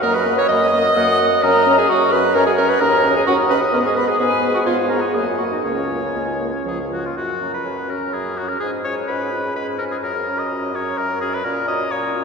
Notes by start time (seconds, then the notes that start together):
0.02 F#2 A#3 A#4 D#5 A#5
0.15 B4 B5
0.26 A#3
0.38 C#5 C#6
0.49 F#2 A#3 D#5 D#6
0.73 A#3
0.96 F#2 A#3 F#5
1.21 A#3
1.43 F#2 C#4 A#4 D#5 A#5
1.67 C#4
1.78 G#4 G#5
1.89 F#2 C#4 F#4 F#5
2.12 C#4 B4 B5
2.35 F#2 C#4 A#4 C#5 A#5
2.46 G#4 G#5
2.58 C#4 A#4 A#5
2.69 B4 B5
2.80 D#2 C#4 A#4 D#5 A#5
3.04 C#4
3.16 G#4 G#5
3.27 D#2 C#4 F#4 F#5
3.50 C#4 B4 B5
3.73 G#2 B3 A#4 A#5
3.85 G#4 G#5
3.96 B3 B4 B5
4.08 G#4 G#5
4.19 G#2 B3 G#4 B4 G#5
4.43 B3
4.54 F#4 F#5
4.66 G#2 B3 F4 C#5 F5
4.89 B3 A#4 A#5
5.01 G#4 G#5
5.13 F#2 A#3 G#4 D#5 G#5
5.38 A#3 F#4 F#5
5.51 D#4 D#5
5.63 C#2 A#3 C#4 C#5
5.89 A#3
6.15 C#2 A#3
6.40 A#3
6.66 C#2 F3 G#4
6.91 F3 F#4
7.06 F4
7.16 F#2 F#4
7.41 C#4 F#4 A#5
7.54 B4
7.65 F#2
7.89 C#4 F#4 A#4 A#5
8.13 F#2 G#4
8.37 C#4 F#4 A#5
8.48 A#4
8.60 G#2 C#4 F4 G#4 G#5
8.84 C#4 F4 C#5 G#5
9.07 G#2 B4
9.32 C#4 F4 G#5
9.56 G#2 B4
9.78 C#4 F4 A#4 G#5
9.91 G#4
10.03 F#2 A#4
10.27 C#4 F#4 A#5
10.39 D#5
10.51 F#2
10.74 C#4 F#4 C#5 A#5
10.97 F#2 A#4
11.21 C#4 F#4 G#4 A#5
11.34 B4
11.44 A#2 C#4 F#4 A#4 A#5
11.68 C#4 F#4 D#5 A#5
11.91 A#2 C#5
12.15 C#4 F#4 A#5